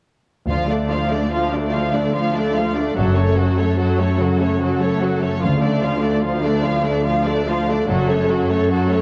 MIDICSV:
0, 0, Header, 1, 7, 480
1, 0, Start_track
1, 0, Tempo, 411523
1, 573, Time_signature, 12, 3, 24, 8
1, 10517, End_track
2, 0, Start_track
2, 0, Title_t, "Violin section"
2, 0, Program_c, 0, 48
2, 570, Note_on_c, 0, 77, 35
2, 796, Note_off_c, 0, 77, 0
2, 831, Note_on_c, 0, 74, 30
2, 1064, Note_off_c, 0, 74, 0
2, 1070, Note_on_c, 0, 77, 32
2, 1299, Note_on_c, 0, 74, 29
2, 1304, Note_off_c, 0, 77, 0
2, 1539, Note_off_c, 0, 74, 0
2, 1546, Note_on_c, 0, 77, 30
2, 1766, Note_off_c, 0, 77, 0
2, 1787, Note_on_c, 0, 74, 28
2, 2023, Note_off_c, 0, 74, 0
2, 2029, Note_on_c, 0, 77, 31
2, 2264, Note_off_c, 0, 77, 0
2, 2270, Note_on_c, 0, 74, 28
2, 2503, Note_on_c, 0, 77, 31
2, 2504, Note_off_c, 0, 74, 0
2, 2724, Note_off_c, 0, 77, 0
2, 2746, Note_on_c, 0, 74, 31
2, 2983, Note_off_c, 0, 74, 0
2, 2986, Note_on_c, 0, 77, 28
2, 3212, Note_on_c, 0, 74, 32
2, 3223, Note_off_c, 0, 77, 0
2, 3456, Note_off_c, 0, 74, 0
2, 3464, Note_on_c, 0, 69, 33
2, 3686, Note_off_c, 0, 69, 0
2, 3695, Note_on_c, 0, 73, 30
2, 3937, Note_off_c, 0, 73, 0
2, 3941, Note_on_c, 0, 69, 31
2, 4173, Note_on_c, 0, 73, 31
2, 4180, Note_off_c, 0, 69, 0
2, 4412, Note_on_c, 0, 69, 29
2, 4417, Note_off_c, 0, 73, 0
2, 4639, Note_off_c, 0, 69, 0
2, 4669, Note_on_c, 0, 73, 28
2, 4905, Note_off_c, 0, 73, 0
2, 4910, Note_on_c, 0, 69, 31
2, 5145, Note_off_c, 0, 69, 0
2, 5162, Note_on_c, 0, 73, 31
2, 5390, Note_off_c, 0, 73, 0
2, 5401, Note_on_c, 0, 69, 33
2, 5614, Note_off_c, 0, 69, 0
2, 5626, Note_on_c, 0, 73, 34
2, 5857, Note_on_c, 0, 69, 31
2, 5862, Note_off_c, 0, 73, 0
2, 6087, Note_on_c, 0, 73, 35
2, 6097, Note_off_c, 0, 69, 0
2, 6332, Note_off_c, 0, 73, 0
2, 6340, Note_on_c, 0, 77, 36
2, 6563, Note_off_c, 0, 77, 0
2, 6567, Note_on_c, 0, 74, 32
2, 6807, Note_on_c, 0, 77, 32
2, 6812, Note_off_c, 0, 74, 0
2, 7038, Note_on_c, 0, 74, 34
2, 7052, Note_off_c, 0, 77, 0
2, 7280, Note_on_c, 0, 77, 30
2, 7287, Note_off_c, 0, 74, 0
2, 7511, Note_off_c, 0, 77, 0
2, 7512, Note_on_c, 0, 74, 31
2, 7764, Note_off_c, 0, 74, 0
2, 7769, Note_on_c, 0, 77, 34
2, 7996, Note_on_c, 0, 74, 32
2, 8012, Note_off_c, 0, 77, 0
2, 8235, Note_on_c, 0, 77, 34
2, 8245, Note_off_c, 0, 74, 0
2, 8467, Note_off_c, 0, 77, 0
2, 8480, Note_on_c, 0, 74, 36
2, 8727, Note_off_c, 0, 74, 0
2, 8731, Note_on_c, 0, 77, 34
2, 8972, Note_off_c, 0, 77, 0
2, 8980, Note_on_c, 0, 74, 38
2, 9207, Note_on_c, 0, 69, 37
2, 9215, Note_off_c, 0, 74, 0
2, 9431, Note_off_c, 0, 69, 0
2, 9446, Note_on_c, 0, 73, 35
2, 9682, Note_on_c, 0, 69, 38
2, 9687, Note_off_c, 0, 73, 0
2, 9925, Note_off_c, 0, 69, 0
2, 9925, Note_on_c, 0, 73, 35
2, 10158, Note_on_c, 0, 69, 33
2, 10166, Note_off_c, 0, 73, 0
2, 10385, Note_off_c, 0, 69, 0
2, 10397, Note_on_c, 0, 73, 33
2, 10517, Note_off_c, 0, 73, 0
2, 10517, End_track
3, 0, Start_track
3, 0, Title_t, "Violin section"
3, 0, Program_c, 1, 48
3, 571, Note_on_c, 1, 65, 34
3, 797, Note_off_c, 1, 65, 0
3, 817, Note_on_c, 1, 62, 30
3, 1057, Note_off_c, 1, 62, 0
3, 1063, Note_on_c, 1, 65, 29
3, 1285, Note_on_c, 1, 62, 31
3, 1300, Note_off_c, 1, 65, 0
3, 1528, Note_on_c, 1, 65, 30
3, 1532, Note_off_c, 1, 62, 0
3, 1756, Note_off_c, 1, 65, 0
3, 1779, Note_on_c, 1, 62, 29
3, 2019, Note_off_c, 1, 62, 0
3, 2022, Note_on_c, 1, 65, 31
3, 2252, Note_on_c, 1, 62, 30
3, 2260, Note_off_c, 1, 65, 0
3, 2495, Note_off_c, 1, 62, 0
3, 2500, Note_on_c, 1, 65, 29
3, 2723, Note_off_c, 1, 65, 0
3, 2734, Note_on_c, 1, 62, 32
3, 2968, Note_on_c, 1, 65, 30
3, 2977, Note_off_c, 1, 62, 0
3, 3214, Note_off_c, 1, 65, 0
3, 3217, Note_on_c, 1, 62, 32
3, 3458, Note_on_c, 1, 66, 36
3, 3459, Note_off_c, 1, 62, 0
3, 3683, Note_off_c, 1, 66, 0
3, 3694, Note_on_c, 1, 69, 30
3, 3937, Note_off_c, 1, 69, 0
3, 3942, Note_on_c, 1, 66, 31
3, 4180, Note_off_c, 1, 66, 0
3, 4185, Note_on_c, 1, 69, 34
3, 4422, Note_off_c, 1, 69, 0
3, 4426, Note_on_c, 1, 66, 31
3, 4644, Note_on_c, 1, 69, 29
3, 4646, Note_off_c, 1, 66, 0
3, 4887, Note_on_c, 1, 66, 32
3, 4892, Note_off_c, 1, 69, 0
3, 5132, Note_on_c, 1, 69, 31
3, 5133, Note_off_c, 1, 66, 0
3, 5363, Note_on_c, 1, 66, 30
3, 5375, Note_off_c, 1, 69, 0
3, 5593, Note_off_c, 1, 66, 0
3, 5601, Note_on_c, 1, 69, 35
3, 5835, Note_on_c, 1, 66, 31
3, 5849, Note_off_c, 1, 69, 0
3, 6063, Note_on_c, 1, 69, 31
3, 6086, Note_off_c, 1, 66, 0
3, 6320, Note_off_c, 1, 69, 0
3, 6320, Note_on_c, 1, 65, 35
3, 6542, Note_on_c, 1, 62, 31
3, 6552, Note_off_c, 1, 65, 0
3, 6776, Note_on_c, 1, 65, 32
3, 6800, Note_off_c, 1, 62, 0
3, 7023, Note_on_c, 1, 62, 33
3, 7036, Note_off_c, 1, 65, 0
3, 7262, Note_on_c, 1, 65, 31
3, 7280, Note_off_c, 1, 62, 0
3, 7502, Note_off_c, 1, 65, 0
3, 7509, Note_on_c, 1, 62, 32
3, 7742, Note_on_c, 1, 65, 36
3, 7763, Note_off_c, 1, 62, 0
3, 7993, Note_on_c, 1, 62, 34
3, 7998, Note_off_c, 1, 65, 0
3, 8243, Note_off_c, 1, 62, 0
3, 8249, Note_on_c, 1, 65, 34
3, 8474, Note_off_c, 1, 65, 0
3, 8499, Note_on_c, 1, 62, 36
3, 8736, Note_off_c, 1, 62, 0
3, 8749, Note_on_c, 1, 65, 34
3, 8973, Note_on_c, 1, 62, 36
3, 8980, Note_off_c, 1, 65, 0
3, 9210, Note_on_c, 1, 66, 42
3, 9212, Note_off_c, 1, 62, 0
3, 9433, Note_off_c, 1, 66, 0
3, 9447, Note_on_c, 1, 69, 36
3, 9688, Note_off_c, 1, 69, 0
3, 9696, Note_on_c, 1, 66, 33
3, 9914, Note_on_c, 1, 69, 36
3, 9932, Note_off_c, 1, 66, 0
3, 10160, Note_off_c, 1, 69, 0
3, 10167, Note_on_c, 1, 66, 35
3, 10390, Note_off_c, 1, 66, 0
3, 10402, Note_on_c, 1, 69, 34
3, 10517, Note_off_c, 1, 69, 0
3, 10517, End_track
4, 0, Start_track
4, 0, Title_t, "Harp"
4, 0, Program_c, 2, 46
4, 570, Note_on_c, 2, 50, 35
4, 821, Note_on_c, 2, 62, 28
4, 1059, Note_on_c, 2, 65, 29
4, 1295, Note_on_c, 2, 69, 32
4, 1529, Note_off_c, 2, 65, 0
4, 1543, Note_on_c, 2, 65, 25
4, 1767, Note_off_c, 2, 62, 0
4, 1781, Note_on_c, 2, 62, 30
4, 2021, Note_on_c, 2, 57, 29
4, 2242, Note_off_c, 2, 62, 0
4, 2256, Note_on_c, 2, 62, 27
4, 2481, Note_off_c, 2, 65, 0
4, 2495, Note_on_c, 2, 65, 29
4, 2717, Note_off_c, 2, 69, 0
4, 2731, Note_on_c, 2, 69, 31
4, 2969, Note_off_c, 2, 65, 0
4, 2983, Note_on_c, 2, 65, 32
4, 3215, Note_off_c, 2, 62, 0
4, 3229, Note_on_c, 2, 62, 28
4, 3455, Note_on_c, 2, 42, 40
4, 3478, Note_off_c, 2, 50, 0
4, 3481, Note_off_c, 2, 65, 0
4, 3484, Note_off_c, 2, 62, 0
4, 3686, Note_on_c, 2, 61, 28
4, 3935, Note_on_c, 2, 66, 30
4, 4160, Note_off_c, 2, 69, 0
4, 4174, Note_on_c, 2, 69, 33
4, 4396, Note_off_c, 2, 66, 0
4, 4410, Note_on_c, 2, 66, 27
4, 4631, Note_off_c, 2, 61, 0
4, 4645, Note_on_c, 2, 61, 29
4, 4890, Note_on_c, 2, 49, 28
4, 5115, Note_off_c, 2, 61, 0
4, 5129, Note_on_c, 2, 61, 30
4, 5355, Note_off_c, 2, 66, 0
4, 5369, Note_on_c, 2, 66, 31
4, 5602, Note_off_c, 2, 69, 0
4, 5616, Note_on_c, 2, 69, 30
4, 5839, Note_off_c, 2, 66, 0
4, 5853, Note_on_c, 2, 66, 29
4, 6084, Note_off_c, 2, 61, 0
4, 6098, Note_on_c, 2, 61, 30
4, 6351, Note_on_c, 2, 50, 37
4, 6352, Note_off_c, 2, 49, 0
4, 6354, Note_off_c, 2, 66, 0
4, 6355, Note_off_c, 2, 42, 0
4, 6357, Note_off_c, 2, 61, 0
4, 6358, Note_off_c, 2, 57, 0
4, 6582, Note_on_c, 2, 62, 29
4, 6822, Note_on_c, 2, 65, 30
4, 7056, Note_off_c, 2, 69, 0
4, 7070, Note_on_c, 2, 69, 35
4, 7288, Note_off_c, 2, 65, 0
4, 7302, Note_on_c, 2, 65, 28
4, 7527, Note_off_c, 2, 62, 0
4, 7541, Note_on_c, 2, 62, 31
4, 7780, Note_on_c, 2, 57, 31
4, 8017, Note_off_c, 2, 62, 0
4, 8031, Note_on_c, 2, 62, 33
4, 8250, Note_off_c, 2, 65, 0
4, 8264, Note_on_c, 2, 65, 33
4, 8498, Note_off_c, 2, 69, 0
4, 8512, Note_on_c, 2, 69, 35
4, 8727, Note_off_c, 2, 65, 0
4, 8741, Note_on_c, 2, 65, 34
4, 8973, Note_off_c, 2, 62, 0
4, 8987, Note_on_c, 2, 62, 33
4, 9218, Note_on_c, 2, 42, 41
4, 9235, Note_off_c, 2, 65, 0
4, 9238, Note_off_c, 2, 50, 0
4, 9238, Note_off_c, 2, 62, 0
4, 9458, Note_on_c, 2, 61, 33
4, 9709, Note_on_c, 2, 66, 35
4, 9935, Note_off_c, 2, 69, 0
4, 9949, Note_on_c, 2, 69, 37
4, 10157, Note_off_c, 2, 66, 0
4, 10171, Note_on_c, 2, 66, 33
4, 10403, Note_off_c, 2, 61, 0
4, 10417, Note_on_c, 2, 61, 35
4, 10517, Note_off_c, 2, 42, 0
4, 10517, Note_off_c, 2, 57, 0
4, 10517, Note_off_c, 2, 61, 0
4, 10517, Note_off_c, 2, 66, 0
4, 10517, Note_off_c, 2, 69, 0
4, 10517, End_track
5, 0, Start_track
5, 0, Title_t, "Viola section"
5, 0, Program_c, 3, 48
5, 584, Note_on_c, 3, 53, 34
5, 804, Note_off_c, 3, 53, 0
5, 821, Note_on_c, 3, 57, 31
5, 1059, Note_off_c, 3, 57, 0
5, 1064, Note_on_c, 3, 53, 28
5, 1301, Note_off_c, 3, 53, 0
5, 1301, Note_on_c, 3, 57, 30
5, 1540, Note_off_c, 3, 57, 0
5, 1548, Note_on_c, 3, 53, 30
5, 1767, Note_off_c, 3, 53, 0
5, 1805, Note_on_c, 3, 57, 30
5, 2032, Note_off_c, 3, 57, 0
5, 2049, Note_on_c, 3, 53, 29
5, 2274, Note_off_c, 3, 53, 0
5, 2289, Note_on_c, 3, 57, 30
5, 2514, Note_off_c, 3, 57, 0
5, 2523, Note_on_c, 3, 53, 30
5, 2735, Note_off_c, 3, 53, 0
5, 2772, Note_on_c, 3, 57, 35
5, 2996, Note_off_c, 3, 57, 0
5, 3015, Note_on_c, 3, 53, 30
5, 3237, Note_off_c, 3, 53, 0
5, 3246, Note_on_c, 3, 57, 31
5, 3473, Note_off_c, 3, 57, 0
5, 3474, Note_on_c, 3, 54, 33
5, 3691, Note_off_c, 3, 54, 0
5, 3705, Note_on_c, 3, 57, 32
5, 3932, Note_on_c, 3, 54, 30
5, 3943, Note_off_c, 3, 57, 0
5, 4176, Note_off_c, 3, 54, 0
5, 4184, Note_on_c, 3, 57, 32
5, 4422, Note_off_c, 3, 57, 0
5, 4423, Note_on_c, 3, 54, 31
5, 4645, Note_off_c, 3, 54, 0
5, 4663, Note_on_c, 3, 57, 31
5, 4882, Note_on_c, 3, 54, 32
5, 4902, Note_off_c, 3, 57, 0
5, 5131, Note_off_c, 3, 54, 0
5, 5135, Note_on_c, 3, 57, 29
5, 5377, Note_off_c, 3, 57, 0
5, 5377, Note_on_c, 3, 54, 31
5, 5601, Note_off_c, 3, 54, 0
5, 5610, Note_on_c, 3, 57, 35
5, 5854, Note_off_c, 3, 57, 0
5, 5862, Note_on_c, 3, 54, 31
5, 6084, Note_on_c, 3, 57, 32
5, 6100, Note_off_c, 3, 54, 0
5, 6327, Note_on_c, 3, 53, 35
5, 6331, Note_off_c, 3, 57, 0
5, 6549, Note_on_c, 3, 57, 34
5, 6555, Note_off_c, 3, 53, 0
5, 6803, Note_off_c, 3, 57, 0
5, 6817, Note_on_c, 3, 53, 32
5, 7046, Note_on_c, 3, 57, 33
5, 7057, Note_off_c, 3, 53, 0
5, 7292, Note_off_c, 3, 57, 0
5, 7292, Note_on_c, 3, 53, 31
5, 7518, Note_off_c, 3, 53, 0
5, 7524, Note_on_c, 3, 57, 32
5, 7756, Note_on_c, 3, 53, 33
5, 7770, Note_off_c, 3, 57, 0
5, 7988, Note_on_c, 3, 57, 34
5, 8005, Note_off_c, 3, 53, 0
5, 8241, Note_off_c, 3, 57, 0
5, 8241, Note_on_c, 3, 53, 33
5, 8470, Note_off_c, 3, 53, 0
5, 8475, Note_on_c, 3, 57, 36
5, 8706, Note_on_c, 3, 53, 34
5, 8724, Note_off_c, 3, 57, 0
5, 8959, Note_off_c, 3, 53, 0
5, 8961, Note_on_c, 3, 57, 35
5, 9196, Note_on_c, 3, 54, 37
5, 9206, Note_off_c, 3, 57, 0
5, 9426, Note_off_c, 3, 54, 0
5, 9442, Note_on_c, 3, 57, 36
5, 9668, Note_on_c, 3, 54, 34
5, 9685, Note_off_c, 3, 57, 0
5, 9915, Note_on_c, 3, 57, 36
5, 9918, Note_off_c, 3, 54, 0
5, 10161, Note_off_c, 3, 57, 0
5, 10169, Note_on_c, 3, 54, 37
5, 10391, Note_off_c, 3, 54, 0
5, 10404, Note_on_c, 3, 57, 36
5, 10517, Note_off_c, 3, 57, 0
5, 10517, End_track
6, 0, Start_track
6, 0, Title_t, "Cello section"
6, 0, Program_c, 4, 48
6, 585, Note_on_c, 4, 38, 37
6, 3419, Note_off_c, 4, 38, 0
6, 3471, Note_on_c, 4, 42, 36
6, 6342, Note_on_c, 4, 38, 40
6, 6343, Note_off_c, 4, 42, 0
6, 9214, Note_off_c, 4, 38, 0
6, 9225, Note_on_c, 4, 42, 43
6, 10517, Note_off_c, 4, 42, 0
6, 10517, End_track
7, 0, Start_track
7, 0, Title_t, "Double bass section"
7, 0, Program_c, 5, 48
7, 573, Note_on_c, 5, 38, 35
7, 1022, Note_off_c, 5, 38, 0
7, 3461, Note_on_c, 5, 30, 38
7, 3907, Note_off_c, 5, 30, 0
7, 6337, Note_on_c, 5, 38, 36
7, 6783, Note_off_c, 5, 38, 0
7, 9198, Note_on_c, 5, 30, 41
7, 9649, Note_off_c, 5, 30, 0
7, 10517, End_track
0, 0, End_of_file